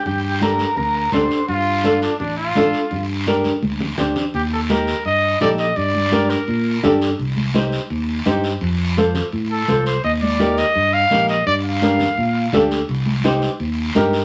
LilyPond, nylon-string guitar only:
\new Staff \with { instrumentName = "Nylon-string guitar" } { \time 4/4 \key g \minor \tempo 4 = 168 r4 <d' g' a'>8 r4. <d' g' a'>8 r8 | r4 <d' f' a'>8 r4. <d' f' a'>8 r8 | r4 <d' g' bes'>8 r4. <d' g' c''>8 r8 | r4 <ees' g' bes'>8 r4. <ees' g' a'>8 r8 |
r4 <d' g' bes'>8 r4. <d' g' a'>8 r8 | r4 <ees' g' c''>8 r4. <ees' g' c''>8 r8 | r4 <f' a' c''>8 r4. <f' a' c''>8 r8 | r4 <ees' g' bes'>8 r4. <ees' g' bes'>8 r8 |
r4 <d' g' bes'>8 r4. <d' g' a'>8 r8 | r4 <ees' g' c''>8 r4. <ees' g' bes'>8 r8 | }